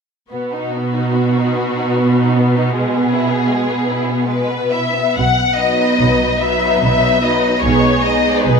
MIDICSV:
0, 0, Header, 1, 6, 480
1, 0, Start_track
1, 0, Key_signature, 5, "major"
1, 0, Tempo, 823045
1, 188, Time_signature, 3, 2, 24, 8
1, 1145, Tempo, 764331
1, 2105, Tempo, 803213
1, 2585, Tempo, 858369
1, 3545, Tempo, 815217
1, 5068, End_track
2, 0, Start_track
2, 0, Title_t, "Violin section"
2, 0, Program_c, 0, 48
2, 189, Note_on_c, 0, 66, 32
2, 1602, Note_off_c, 0, 66, 0
2, 1618, Note_on_c, 0, 68, 42
2, 2580, Note_off_c, 0, 68, 0
2, 2580, Note_on_c, 0, 71, 46
2, 2809, Note_off_c, 0, 71, 0
2, 2827, Note_on_c, 0, 76, 42
2, 3075, Note_on_c, 0, 78, 52
2, 3076, Note_off_c, 0, 76, 0
2, 3304, Note_on_c, 0, 75, 44
2, 3308, Note_off_c, 0, 78, 0
2, 3778, Note_off_c, 0, 75, 0
2, 3780, Note_on_c, 0, 76, 45
2, 4016, Note_off_c, 0, 76, 0
2, 4023, Note_on_c, 0, 76, 52
2, 4263, Note_off_c, 0, 76, 0
2, 4266, Note_on_c, 0, 75, 41
2, 4498, Note_on_c, 0, 73, 48
2, 4510, Note_off_c, 0, 75, 0
2, 4742, Note_off_c, 0, 73, 0
2, 4746, Note_on_c, 0, 75, 45
2, 4977, Note_on_c, 0, 71, 44
2, 4984, Note_off_c, 0, 75, 0
2, 5068, Note_off_c, 0, 71, 0
2, 5068, End_track
3, 0, Start_track
3, 0, Title_t, "Violin section"
3, 0, Program_c, 1, 48
3, 186, Note_on_c, 1, 59, 28
3, 300, Note_off_c, 1, 59, 0
3, 317, Note_on_c, 1, 63, 27
3, 433, Note_off_c, 1, 63, 0
3, 440, Note_on_c, 1, 59, 23
3, 549, Note_on_c, 1, 63, 28
3, 554, Note_off_c, 1, 59, 0
3, 666, Note_on_c, 1, 59, 28
3, 668, Note_off_c, 1, 63, 0
3, 786, Note_on_c, 1, 63, 29
3, 787, Note_off_c, 1, 59, 0
3, 908, Note_off_c, 1, 63, 0
3, 916, Note_on_c, 1, 59, 31
3, 1031, Note_off_c, 1, 59, 0
3, 1035, Note_on_c, 1, 63, 32
3, 1147, Note_on_c, 1, 59, 31
3, 1148, Note_off_c, 1, 63, 0
3, 1269, Note_off_c, 1, 59, 0
3, 1271, Note_on_c, 1, 63, 34
3, 1390, Note_off_c, 1, 63, 0
3, 1399, Note_on_c, 1, 59, 38
3, 1513, Note_off_c, 1, 59, 0
3, 1521, Note_on_c, 1, 63, 36
3, 1633, Note_off_c, 1, 63, 0
3, 1637, Note_on_c, 1, 56, 34
3, 1742, Note_off_c, 1, 56, 0
3, 1759, Note_on_c, 1, 59, 35
3, 1871, Note_off_c, 1, 59, 0
3, 1879, Note_on_c, 1, 64, 36
3, 1991, Note_off_c, 1, 64, 0
3, 1991, Note_on_c, 1, 59, 33
3, 2108, Note_off_c, 1, 59, 0
3, 2112, Note_on_c, 1, 56, 36
3, 2225, Note_off_c, 1, 56, 0
3, 2228, Note_on_c, 1, 59, 33
3, 2342, Note_on_c, 1, 64, 33
3, 2344, Note_off_c, 1, 59, 0
3, 2460, Note_on_c, 1, 59, 34
3, 2462, Note_off_c, 1, 64, 0
3, 2578, Note_on_c, 1, 56, 32
3, 2583, Note_off_c, 1, 59, 0
3, 2700, Note_off_c, 1, 56, 0
3, 2704, Note_on_c, 1, 59, 31
3, 2825, Note_on_c, 1, 64, 29
3, 2829, Note_off_c, 1, 59, 0
3, 2950, Note_on_c, 1, 59, 27
3, 2953, Note_off_c, 1, 64, 0
3, 3075, Note_off_c, 1, 59, 0
3, 3303, Note_on_c, 1, 71, 25
3, 3307, Note_on_c, 1, 63, 22
3, 3768, Note_off_c, 1, 71, 0
3, 3769, Note_off_c, 1, 63, 0
3, 3781, Note_on_c, 1, 63, 27
3, 3783, Note_on_c, 1, 71, 27
3, 4253, Note_off_c, 1, 71, 0
3, 4258, Note_off_c, 1, 63, 0
3, 4260, Note_on_c, 1, 71, 30
3, 4266, Note_on_c, 1, 63, 30
3, 4502, Note_off_c, 1, 71, 0
3, 4505, Note_off_c, 1, 63, 0
3, 4515, Note_on_c, 1, 63, 27
3, 4516, Note_on_c, 1, 68, 26
3, 4746, Note_off_c, 1, 63, 0
3, 4747, Note_off_c, 1, 68, 0
3, 4757, Note_on_c, 1, 68, 25
3, 4758, Note_on_c, 1, 63, 29
3, 5068, Note_off_c, 1, 63, 0
3, 5068, Note_off_c, 1, 68, 0
3, 5068, End_track
4, 0, Start_track
4, 0, Title_t, "Viola section"
4, 0, Program_c, 2, 48
4, 178, Note_on_c, 2, 59, 29
4, 2929, Note_off_c, 2, 59, 0
4, 3306, Note_on_c, 2, 59, 28
4, 3312, Note_on_c, 2, 54, 27
4, 3769, Note_off_c, 2, 59, 0
4, 3773, Note_off_c, 2, 54, 0
4, 3778, Note_on_c, 2, 59, 28
4, 3779, Note_on_c, 2, 54, 28
4, 4252, Note_off_c, 2, 54, 0
4, 4254, Note_off_c, 2, 59, 0
4, 4259, Note_on_c, 2, 54, 27
4, 4261, Note_on_c, 2, 59, 28
4, 4496, Note_off_c, 2, 59, 0
4, 4502, Note_off_c, 2, 54, 0
4, 4503, Note_on_c, 2, 59, 30
4, 4505, Note_on_c, 2, 56, 28
4, 4740, Note_off_c, 2, 59, 0
4, 4741, Note_off_c, 2, 56, 0
4, 4751, Note_on_c, 2, 56, 29
4, 4753, Note_on_c, 2, 59, 32
4, 5068, Note_off_c, 2, 56, 0
4, 5068, Note_off_c, 2, 59, 0
4, 5068, End_track
5, 0, Start_track
5, 0, Title_t, "Cello section"
5, 0, Program_c, 3, 48
5, 186, Note_on_c, 3, 47, 36
5, 2933, Note_off_c, 3, 47, 0
5, 3078, Note_on_c, 3, 47, 40
5, 3476, Note_off_c, 3, 47, 0
5, 3543, Note_on_c, 3, 47, 35
5, 3953, Note_off_c, 3, 47, 0
5, 4023, Note_on_c, 3, 47, 38
5, 4438, Note_off_c, 3, 47, 0
5, 4512, Note_on_c, 3, 47, 43
5, 4914, Note_off_c, 3, 47, 0
5, 4983, Note_on_c, 3, 47, 32
5, 5068, Note_off_c, 3, 47, 0
5, 5068, End_track
6, 0, Start_track
6, 0, Title_t, "Double bass section"
6, 0, Program_c, 4, 48
6, 3075, Note_on_c, 4, 35, 40
6, 3475, Note_off_c, 4, 35, 0
6, 3541, Note_on_c, 4, 35, 39
6, 3952, Note_off_c, 4, 35, 0
6, 4020, Note_on_c, 4, 35, 32
6, 4437, Note_off_c, 4, 35, 0
6, 4506, Note_on_c, 4, 35, 40
6, 4912, Note_off_c, 4, 35, 0
6, 4984, Note_on_c, 4, 35, 38
6, 5068, Note_off_c, 4, 35, 0
6, 5068, End_track
0, 0, End_of_file